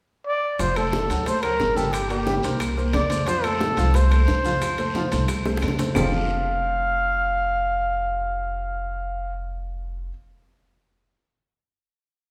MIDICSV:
0, 0, Header, 1, 5, 480
1, 0, Start_track
1, 0, Key_signature, -1, "major"
1, 0, Tempo, 333890
1, 858, Time_signature, 4, 2, 24, 8
1, 17684, End_track
2, 0, Start_track
2, 0, Title_t, "Trumpet"
2, 0, Program_c, 0, 56
2, 380, Note_on_c, 0, 74, 99
2, 860, Note_on_c, 0, 72, 89
2, 882, Note_off_c, 0, 74, 0
2, 1102, Note_on_c, 0, 69, 87
2, 1124, Note_off_c, 0, 72, 0
2, 1822, Note_off_c, 0, 69, 0
2, 1832, Note_on_c, 0, 72, 80
2, 2037, Note_on_c, 0, 70, 88
2, 2059, Note_off_c, 0, 72, 0
2, 2529, Note_on_c, 0, 69, 77
2, 2551, Note_off_c, 0, 70, 0
2, 2766, Note_on_c, 0, 67, 81
2, 2787, Note_off_c, 0, 69, 0
2, 3007, Note_off_c, 0, 67, 0
2, 3015, Note_on_c, 0, 67, 76
2, 3691, Note_off_c, 0, 67, 0
2, 4227, Note_on_c, 0, 74, 92
2, 4699, Note_on_c, 0, 72, 94
2, 4720, Note_off_c, 0, 74, 0
2, 4947, Note_on_c, 0, 69, 92
2, 4969, Note_off_c, 0, 72, 0
2, 5686, Note_on_c, 0, 72, 87
2, 5708, Note_off_c, 0, 69, 0
2, 8087, Note_off_c, 0, 72, 0
2, 8562, Note_on_c, 0, 77, 81
2, 13488, Note_off_c, 0, 77, 0
2, 17684, End_track
3, 0, Start_track
3, 0, Title_t, "Grand piano"
3, 0, Program_c, 1, 0
3, 852, Note_on_c, 1, 53, 68
3, 856, Note_on_c, 1, 65, 68
3, 859, Note_on_c, 1, 77, 72
3, 1052, Note_off_c, 1, 53, 0
3, 1054, Note_off_c, 1, 65, 0
3, 1056, Note_off_c, 1, 77, 0
3, 1098, Note_on_c, 1, 57, 63
3, 1099, Note_on_c, 1, 69, 70
3, 1106, Note_on_c, 1, 72, 67
3, 1493, Note_off_c, 1, 57, 0
3, 1493, Note_off_c, 1, 69, 0
3, 1497, Note_off_c, 1, 72, 0
3, 1578, Note_on_c, 1, 54, 77
3, 1579, Note_on_c, 1, 66, 76
3, 1584, Note_on_c, 1, 78, 74
3, 1776, Note_off_c, 1, 54, 0
3, 1777, Note_off_c, 1, 66, 0
3, 1780, Note_off_c, 1, 78, 0
3, 1820, Note_on_c, 1, 57, 67
3, 1821, Note_on_c, 1, 69, 62
3, 1828, Note_on_c, 1, 72, 63
3, 2017, Note_off_c, 1, 57, 0
3, 2018, Note_off_c, 1, 69, 0
3, 2022, Note_off_c, 1, 72, 0
3, 2061, Note_on_c, 1, 54, 67
3, 2065, Note_on_c, 1, 66, 68
3, 2068, Note_on_c, 1, 72, 69
3, 2455, Note_off_c, 1, 54, 0
3, 2458, Note_off_c, 1, 66, 0
3, 2459, Note_off_c, 1, 72, 0
3, 2538, Note_on_c, 1, 55, 77
3, 2540, Note_on_c, 1, 67, 76
3, 2545, Note_on_c, 1, 79, 71
3, 2934, Note_off_c, 1, 55, 0
3, 2935, Note_off_c, 1, 67, 0
3, 2938, Note_off_c, 1, 79, 0
3, 3018, Note_on_c, 1, 58, 73
3, 3021, Note_on_c, 1, 70, 68
3, 3023, Note_on_c, 1, 74, 70
3, 3218, Note_off_c, 1, 58, 0
3, 3219, Note_off_c, 1, 70, 0
3, 3221, Note_off_c, 1, 74, 0
3, 3265, Note_on_c, 1, 55, 79
3, 3266, Note_on_c, 1, 67, 76
3, 3273, Note_on_c, 1, 79, 76
3, 3462, Note_off_c, 1, 55, 0
3, 3463, Note_off_c, 1, 67, 0
3, 3467, Note_off_c, 1, 79, 0
3, 3503, Note_on_c, 1, 58, 68
3, 3507, Note_on_c, 1, 70, 71
3, 3516, Note_on_c, 1, 72, 68
3, 3899, Note_off_c, 1, 58, 0
3, 3901, Note_off_c, 1, 70, 0
3, 3906, Note_off_c, 1, 72, 0
3, 3986, Note_on_c, 1, 58, 73
3, 3987, Note_on_c, 1, 70, 73
3, 3996, Note_on_c, 1, 72, 72
3, 4381, Note_off_c, 1, 58, 0
3, 4382, Note_off_c, 1, 70, 0
3, 4387, Note_off_c, 1, 72, 0
3, 4462, Note_on_c, 1, 57, 68
3, 4466, Note_on_c, 1, 69, 61
3, 4470, Note_on_c, 1, 72, 67
3, 4662, Note_off_c, 1, 57, 0
3, 4664, Note_off_c, 1, 69, 0
3, 4667, Note_off_c, 1, 72, 0
3, 4704, Note_on_c, 1, 53, 74
3, 4705, Note_on_c, 1, 65, 77
3, 4716, Note_on_c, 1, 77, 77
3, 4904, Note_off_c, 1, 53, 0
3, 4905, Note_off_c, 1, 65, 0
3, 4911, Note_off_c, 1, 77, 0
3, 4946, Note_on_c, 1, 57, 69
3, 4949, Note_on_c, 1, 69, 71
3, 4955, Note_on_c, 1, 72, 66
3, 5343, Note_off_c, 1, 57, 0
3, 5345, Note_off_c, 1, 69, 0
3, 5348, Note_off_c, 1, 72, 0
3, 5433, Note_on_c, 1, 53, 77
3, 5438, Note_on_c, 1, 65, 77
3, 5442, Note_on_c, 1, 77, 76
3, 5630, Note_off_c, 1, 53, 0
3, 5633, Note_off_c, 1, 65, 0
3, 5636, Note_off_c, 1, 77, 0
3, 5669, Note_on_c, 1, 57, 67
3, 5669, Note_on_c, 1, 69, 63
3, 5677, Note_on_c, 1, 72, 68
3, 5868, Note_off_c, 1, 57, 0
3, 5868, Note_off_c, 1, 69, 0
3, 5873, Note_off_c, 1, 72, 0
3, 5912, Note_on_c, 1, 57, 70
3, 5916, Note_on_c, 1, 69, 68
3, 5924, Note_on_c, 1, 72, 69
3, 6308, Note_off_c, 1, 57, 0
3, 6311, Note_off_c, 1, 69, 0
3, 6315, Note_off_c, 1, 72, 0
3, 6392, Note_on_c, 1, 53, 72
3, 6399, Note_on_c, 1, 65, 78
3, 6403, Note_on_c, 1, 77, 74
3, 6789, Note_off_c, 1, 53, 0
3, 6793, Note_off_c, 1, 65, 0
3, 6795, Note_off_c, 1, 77, 0
3, 6879, Note_on_c, 1, 57, 64
3, 6881, Note_on_c, 1, 69, 70
3, 6889, Note_on_c, 1, 72, 71
3, 7076, Note_off_c, 1, 57, 0
3, 7077, Note_off_c, 1, 69, 0
3, 7082, Note_off_c, 1, 72, 0
3, 7118, Note_on_c, 1, 53, 80
3, 7125, Note_on_c, 1, 65, 76
3, 7125, Note_on_c, 1, 77, 79
3, 7316, Note_off_c, 1, 53, 0
3, 7319, Note_off_c, 1, 77, 0
3, 7320, Note_off_c, 1, 65, 0
3, 7355, Note_on_c, 1, 57, 70
3, 7359, Note_on_c, 1, 69, 67
3, 7364, Note_on_c, 1, 72, 69
3, 7752, Note_off_c, 1, 57, 0
3, 7754, Note_off_c, 1, 69, 0
3, 7756, Note_off_c, 1, 72, 0
3, 7843, Note_on_c, 1, 57, 70
3, 7848, Note_on_c, 1, 69, 64
3, 7852, Note_on_c, 1, 72, 69
3, 8236, Note_off_c, 1, 57, 0
3, 8239, Note_off_c, 1, 69, 0
3, 8241, Note_off_c, 1, 72, 0
3, 8329, Note_on_c, 1, 57, 65
3, 8330, Note_on_c, 1, 69, 66
3, 8333, Note_on_c, 1, 72, 68
3, 8523, Note_off_c, 1, 57, 0
3, 8523, Note_off_c, 1, 69, 0
3, 8525, Note_off_c, 1, 72, 0
3, 8564, Note_on_c, 1, 53, 84
3, 8565, Note_on_c, 1, 60, 76
3, 8568, Note_on_c, 1, 62, 71
3, 8571, Note_on_c, 1, 65, 76
3, 8573, Note_on_c, 1, 67, 76
3, 8579, Note_on_c, 1, 69, 89
3, 14495, Note_off_c, 1, 53, 0
3, 14495, Note_off_c, 1, 60, 0
3, 14497, Note_off_c, 1, 62, 0
3, 14499, Note_off_c, 1, 65, 0
3, 14499, Note_off_c, 1, 67, 0
3, 14503, Note_off_c, 1, 69, 0
3, 17684, End_track
4, 0, Start_track
4, 0, Title_t, "Upright bass"
4, 0, Program_c, 2, 32
4, 852, Note_on_c, 2, 29, 83
4, 1526, Note_off_c, 2, 29, 0
4, 1566, Note_on_c, 2, 38, 77
4, 2243, Note_off_c, 2, 38, 0
4, 2297, Note_on_c, 2, 31, 83
4, 3421, Note_off_c, 2, 31, 0
4, 3501, Note_on_c, 2, 36, 81
4, 4175, Note_off_c, 2, 36, 0
4, 4227, Note_on_c, 2, 41, 88
4, 5351, Note_off_c, 2, 41, 0
4, 5427, Note_on_c, 2, 36, 84
4, 6102, Note_off_c, 2, 36, 0
4, 6153, Note_on_c, 2, 41, 86
4, 7277, Note_off_c, 2, 41, 0
4, 7365, Note_on_c, 2, 36, 85
4, 8033, Note_off_c, 2, 36, 0
4, 8083, Note_on_c, 2, 41, 87
4, 8507, Note_off_c, 2, 41, 0
4, 8566, Note_on_c, 2, 29, 89
4, 14496, Note_off_c, 2, 29, 0
4, 17684, End_track
5, 0, Start_track
5, 0, Title_t, "Drums"
5, 839, Note_on_c, 9, 74, 70
5, 854, Note_on_c, 9, 65, 66
5, 857, Note_on_c, 9, 60, 59
5, 857, Note_on_c, 9, 70, 85
5, 858, Note_on_c, 9, 63, 33
5, 983, Note_off_c, 9, 74, 0
5, 998, Note_off_c, 9, 65, 0
5, 1001, Note_off_c, 9, 60, 0
5, 1001, Note_off_c, 9, 63, 0
5, 1001, Note_off_c, 9, 70, 0
5, 1096, Note_on_c, 9, 60, 29
5, 1097, Note_on_c, 9, 75, 55
5, 1098, Note_on_c, 9, 65, 80
5, 1099, Note_on_c, 9, 63, 32
5, 1106, Note_on_c, 9, 70, 26
5, 1240, Note_off_c, 9, 60, 0
5, 1241, Note_off_c, 9, 75, 0
5, 1242, Note_off_c, 9, 65, 0
5, 1243, Note_off_c, 9, 63, 0
5, 1250, Note_off_c, 9, 70, 0
5, 1326, Note_on_c, 9, 73, 64
5, 1334, Note_on_c, 9, 63, 82
5, 1339, Note_on_c, 9, 60, 60
5, 1346, Note_on_c, 9, 70, 28
5, 1470, Note_off_c, 9, 73, 0
5, 1477, Note_off_c, 9, 63, 0
5, 1482, Note_off_c, 9, 60, 0
5, 1490, Note_off_c, 9, 70, 0
5, 1579, Note_on_c, 9, 73, 67
5, 1580, Note_on_c, 9, 63, 36
5, 1581, Note_on_c, 9, 65, 59
5, 1593, Note_on_c, 9, 70, 60
5, 1723, Note_off_c, 9, 73, 0
5, 1724, Note_off_c, 9, 63, 0
5, 1725, Note_off_c, 9, 65, 0
5, 1737, Note_off_c, 9, 70, 0
5, 1815, Note_on_c, 9, 60, 64
5, 1818, Note_on_c, 9, 65, 63
5, 1820, Note_on_c, 9, 74, 67
5, 1821, Note_on_c, 9, 63, 31
5, 1835, Note_on_c, 9, 70, 78
5, 1959, Note_off_c, 9, 60, 0
5, 1961, Note_off_c, 9, 65, 0
5, 1963, Note_off_c, 9, 74, 0
5, 1965, Note_off_c, 9, 63, 0
5, 1979, Note_off_c, 9, 70, 0
5, 2053, Note_on_c, 9, 65, 83
5, 2058, Note_on_c, 9, 75, 59
5, 2060, Note_on_c, 9, 60, 30
5, 2062, Note_on_c, 9, 63, 33
5, 2072, Note_on_c, 9, 70, 26
5, 2197, Note_off_c, 9, 65, 0
5, 2202, Note_off_c, 9, 75, 0
5, 2203, Note_off_c, 9, 60, 0
5, 2205, Note_off_c, 9, 63, 0
5, 2216, Note_off_c, 9, 70, 0
5, 2293, Note_on_c, 9, 66, 64
5, 2296, Note_on_c, 9, 60, 32
5, 2296, Note_on_c, 9, 61, 78
5, 2298, Note_on_c, 9, 73, 69
5, 2308, Note_on_c, 9, 70, 25
5, 2436, Note_off_c, 9, 66, 0
5, 2440, Note_off_c, 9, 60, 0
5, 2440, Note_off_c, 9, 61, 0
5, 2442, Note_off_c, 9, 73, 0
5, 2452, Note_off_c, 9, 70, 0
5, 2538, Note_on_c, 9, 63, 80
5, 2538, Note_on_c, 9, 73, 65
5, 2539, Note_on_c, 9, 60, 33
5, 2549, Note_on_c, 9, 70, 70
5, 2681, Note_off_c, 9, 63, 0
5, 2682, Note_off_c, 9, 73, 0
5, 2683, Note_off_c, 9, 60, 0
5, 2693, Note_off_c, 9, 70, 0
5, 2775, Note_on_c, 9, 60, 63
5, 2776, Note_on_c, 9, 63, 31
5, 2776, Note_on_c, 9, 75, 58
5, 2784, Note_on_c, 9, 65, 92
5, 2795, Note_on_c, 9, 70, 82
5, 2918, Note_off_c, 9, 60, 0
5, 2919, Note_off_c, 9, 75, 0
5, 2920, Note_off_c, 9, 63, 0
5, 2928, Note_off_c, 9, 65, 0
5, 2939, Note_off_c, 9, 70, 0
5, 3021, Note_on_c, 9, 60, 31
5, 3023, Note_on_c, 9, 63, 34
5, 3025, Note_on_c, 9, 65, 63
5, 3026, Note_on_c, 9, 70, 27
5, 3164, Note_off_c, 9, 60, 0
5, 3167, Note_off_c, 9, 63, 0
5, 3169, Note_off_c, 9, 65, 0
5, 3170, Note_off_c, 9, 70, 0
5, 3249, Note_on_c, 9, 73, 62
5, 3257, Note_on_c, 9, 63, 91
5, 3260, Note_on_c, 9, 60, 57
5, 3268, Note_on_c, 9, 70, 28
5, 3392, Note_off_c, 9, 73, 0
5, 3401, Note_off_c, 9, 63, 0
5, 3404, Note_off_c, 9, 60, 0
5, 3411, Note_off_c, 9, 70, 0
5, 3489, Note_on_c, 9, 73, 73
5, 3508, Note_on_c, 9, 70, 67
5, 3509, Note_on_c, 9, 63, 36
5, 3515, Note_on_c, 9, 65, 64
5, 3633, Note_off_c, 9, 73, 0
5, 3652, Note_off_c, 9, 70, 0
5, 3653, Note_off_c, 9, 63, 0
5, 3658, Note_off_c, 9, 65, 0
5, 3727, Note_on_c, 9, 74, 66
5, 3738, Note_on_c, 9, 60, 66
5, 3740, Note_on_c, 9, 65, 83
5, 3745, Note_on_c, 9, 63, 31
5, 3747, Note_on_c, 9, 75, 65
5, 3753, Note_on_c, 9, 70, 71
5, 3871, Note_off_c, 9, 74, 0
5, 3882, Note_off_c, 9, 60, 0
5, 3884, Note_off_c, 9, 65, 0
5, 3888, Note_off_c, 9, 63, 0
5, 3890, Note_off_c, 9, 75, 0
5, 3897, Note_off_c, 9, 70, 0
5, 3989, Note_on_c, 9, 60, 29
5, 3990, Note_on_c, 9, 63, 31
5, 4002, Note_on_c, 9, 70, 28
5, 4133, Note_off_c, 9, 60, 0
5, 4134, Note_off_c, 9, 63, 0
5, 4145, Note_off_c, 9, 70, 0
5, 4214, Note_on_c, 9, 73, 69
5, 4219, Note_on_c, 9, 65, 79
5, 4219, Note_on_c, 9, 66, 66
5, 4219, Note_on_c, 9, 75, 62
5, 4226, Note_on_c, 9, 63, 77
5, 4230, Note_on_c, 9, 60, 35
5, 4230, Note_on_c, 9, 61, 77
5, 4235, Note_on_c, 9, 70, 26
5, 4358, Note_off_c, 9, 73, 0
5, 4362, Note_off_c, 9, 65, 0
5, 4362, Note_off_c, 9, 66, 0
5, 4363, Note_off_c, 9, 75, 0
5, 4369, Note_off_c, 9, 63, 0
5, 4373, Note_off_c, 9, 60, 0
5, 4373, Note_off_c, 9, 61, 0
5, 4379, Note_off_c, 9, 70, 0
5, 4453, Note_on_c, 9, 73, 73
5, 4456, Note_on_c, 9, 65, 65
5, 4466, Note_on_c, 9, 63, 80
5, 4467, Note_on_c, 9, 60, 32
5, 4482, Note_on_c, 9, 70, 74
5, 4596, Note_off_c, 9, 73, 0
5, 4599, Note_off_c, 9, 65, 0
5, 4610, Note_off_c, 9, 63, 0
5, 4611, Note_off_c, 9, 60, 0
5, 4625, Note_off_c, 9, 70, 0
5, 4683, Note_on_c, 9, 74, 71
5, 4694, Note_on_c, 9, 65, 71
5, 4710, Note_on_c, 9, 60, 67
5, 4711, Note_on_c, 9, 63, 29
5, 4720, Note_on_c, 9, 70, 82
5, 4826, Note_off_c, 9, 74, 0
5, 4838, Note_off_c, 9, 65, 0
5, 4853, Note_off_c, 9, 60, 0
5, 4855, Note_off_c, 9, 63, 0
5, 4863, Note_off_c, 9, 70, 0
5, 4943, Note_on_c, 9, 75, 62
5, 4945, Note_on_c, 9, 65, 83
5, 4948, Note_on_c, 9, 60, 31
5, 4953, Note_on_c, 9, 63, 33
5, 4960, Note_on_c, 9, 70, 27
5, 5086, Note_off_c, 9, 75, 0
5, 5088, Note_off_c, 9, 65, 0
5, 5092, Note_off_c, 9, 60, 0
5, 5097, Note_off_c, 9, 63, 0
5, 5103, Note_off_c, 9, 70, 0
5, 5173, Note_on_c, 9, 73, 64
5, 5182, Note_on_c, 9, 63, 92
5, 5191, Note_on_c, 9, 60, 60
5, 5209, Note_on_c, 9, 70, 28
5, 5317, Note_off_c, 9, 73, 0
5, 5325, Note_off_c, 9, 63, 0
5, 5334, Note_off_c, 9, 60, 0
5, 5352, Note_off_c, 9, 70, 0
5, 5415, Note_on_c, 9, 73, 75
5, 5424, Note_on_c, 9, 65, 68
5, 5428, Note_on_c, 9, 63, 36
5, 5441, Note_on_c, 9, 70, 61
5, 5558, Note_off_c, 9, 73, 0
5, 5567, Note_off_c, 9, 65, 0
5, 5572, Note_off_c, 9, 63, 0
5, 5584, Note_off_c, 9, 70, 0
5, 5660, Note_on_c, 9, 74, 74
5, 5666, Note_on_c, 9, 60, 70
5, 5666, Note_on_c, 9, 63, 29
5, 5674, Note_on_c, 9, 65, 70
5, 5690, Note_on_c, 9, 70, 79
5, 5804, Note_off_c, 9, 74, 0
5, 5810, Note_off_c, 9, 60, 0
5, 5810, Note_off_c, 9, 63, 0
5, 5818, Note_off_c, 9, 65, 0
5, 5834, Note_off_c, 9, 70, 0
5, 5908, Note_on_c, 9, 60, 34
5, 5914, Note_on_c, 9, 75, 64
5, 5915, Note_on_c, 9, 63, 34
5, 5918, Note_on_c, 9, 65, 88
5, 5931, Note_on_c, 9, 70, 30
5, 6052, Note_off_c, 9, 60, 0
5, 6058, Note_off_c, 9, 75, 0
5, 6059, Note_off_c, 9, 63, 0
5, 6062, Note_off_c, 9, 65, 0
5, 6075, Note_off_c, 9, 70, 0
5, 6138, Note_on_c, 9, 73, 71
5, 6154, Note_on_c, 9, 60, 34
5, 6154, Note_on_c, 9, 61, 78
5, 6162, Note_on_c, 9, 70, 28
5, 6282, Note_off_c, 9, 73, 0
5, 6297, Note_off_c, 9, 60, 0
5, 6297, Note_off_c, 9, 61, 0
5, 6305, Note_off_c, 9, 70, 0
5, 6390, Note_on_c, 9, 63, 80
5, 6390, Note_on_c, 9, 73, 68
5, 6393, Note_on_c, 9, 60, 33
5, 6402, Note_on_c, 9, 70, 66
5, 6534, Note_off_c, 9, 63, 0
5, 6534, Note_off_c, 9, 73, 0
5, 6537, Note_off_c, 9, 60, 0
5, 6546, Note_off_c, 9, 70, 0
5, 6629, Note_on_c, 9, 74, 66
5, 6635, Note_on_c, 9, 63, 31
5, 6636, Note_on_c, 9, 75, 62
5, 6638, Note_on_c, 9, 65, 93
5, 6639, Note_on_c, 9, 70, 88
5, 6642, Note_on_c, 9, 60, 59
5, 6773, Note_off_c, 9, 74, 0
5, 6779, Note_off_c, 9, 63, 0
5, 6780, Note_off_c, 9, 75, 0
5, 6782, Note_off_c, 9, 65, 0
5, 6783, Note_off_c, 9, 70, 0
5, 6786, Note_off_c, 9, 60, 0
5, 6874, Note_on_c, 9, 65, 66
5, 6876, Note_on_c, 9, 63, 34
5, 6878, Note_on_c, 9, 60, 33
5, 6888, Note_on_c, 9, 70, 26
5, 7017, Note_off_c, 9, 65, 0
5, 7020, Note_off_c, 9, 63, 0
5, 7022, Note_off_c, 9, 60, 0
5, 7031, Note_off_c, 9, 70, 0
5, 7108, Note_on_c, 9, 73, 65
5, 7113, Note_on_c, 9, 63, 89
5, 7118, Note_on_c, 9, 60, 54
5, 7119, Note_on_c, 9, 70, 26
5, 7252, Note_off_c, 9, 73, 0
5, 7257, Note_off_c, 9, 63, 0
5, 7261, Note_off_c, 9, 60, 0
5, 7262, Note_off_c, 9, 70, 0
5, 7354, Note_on_c, 9, 73, 70
5, 7359, Note_on_c, 9, 65, 69
5, 7362, Note_on_c, 9, 70, 61
5, 7364, Note_on_c, 9, 63, 38
5, 7498, Note_off_c, 9, 73, 0
5, 7503, Note_off_c, 9, 65, 0
5, 7505, Note_off_c, 9, 70, 0
5, 7507, Note_off_c, 9, 63, 0
5, 7585, Note_on_c, 9, 74, 67
5, 7593, Note_on_c, 9, 75, 62
5, 7595, Note_on_c, 9, 65, 83
5, 7600, Note_on_c, 9, 60, 65
5, 7600, Note_on_c, 9, 70, 82
5, 7729, Note_off_c, 9, 74, 0
5, 7736, Note_off_c, 9, 75, 0
5, 7739, Note_off_c, 9, 65, 0
5, 7744, Note_off_c, 9, 60, 0
5, 7744, Note_off_c, 9, 70, 0
5, 7842, Note_on_c, 9, 60, 97
5, 7848, Note_on_c, 9, 70, 29
5, 7986, Note_off_c, 9, 60, 0
5, 7992, Note_off_c, 9, 70, 0
5, 8012, Note_on_c, 9, 60, 88
5, 8074, Note_on_c, 9, 73, 65
5, 8078, Note_on_c, 9, 75, 62
5, 8086, Note_on_c, 9, 65, 81
5, 8086, Note_on_c, 9, 66, 60
5, 8087, Note_on_c, 9, 63, 82
5, 8094, Note_on_c, 9, 70, 26
5, 8156, Note_off_c, 9, 60, 0
5, 8163, Note_on_c, 9, 61, 85
5, 8218, Note_off_c, 9, 73, 0
5, 8222, Note_off_c, 9, 75, 0
5, 8230, Note_off_c, 9, 65, 0
5, 8230, Note_off_c, 9, 66, 0
5, 8231, Note_off_c, 9, 63, 0
5, 8237, Note_off_c, 9, 70, 0
5, 8307, Note_off_c, 9, 61, 0
5, 8310, Note_on_c, 9, 73, 65
5, 8321, Note_on_c, 9, 65, 68
5, 8325, Note_on_c, 9, 61, 87
5, 8325, Note_on_c, 9, 70, 69
5, 8327, Note_on_c, 9, 63, 74
5, 8454, Note_off_c, 9, 73, 0
5, 8465, Note_off_c, 9, 65, 0
5, 8468, Note_off_c, 9, 70, 0
5, 8469, Note_off_c, 9, 61, 0
5, 8470, Note_off_c, 9, 63, 0
5, 8553, Note_on_c, 9, 66, 103
5, 8553, Note_on_c, 9, 74, 90
5, 8553, Note_on_c, 9, 75, 97
5, 8571, Note_on_c, 9, 61, 92
5, 8571, Note_on_c, 9, 64, 87
5, 8573, Note_on_c, 9, 70, 94
5, 8697, Note_off_c, 9, 66, 0
5, 8697, Note_off_c, 9, 74, 0
5, 8697, Note_off_c, 9, 75, 0
5, 8715, Note_off_c, 9, 61, 0
5, 8715, Note_off_c, 9, 64, 0
5, 8716, Note_off_c, 9, 70, 0
5, 17684, End_track
0, 0, End_of_file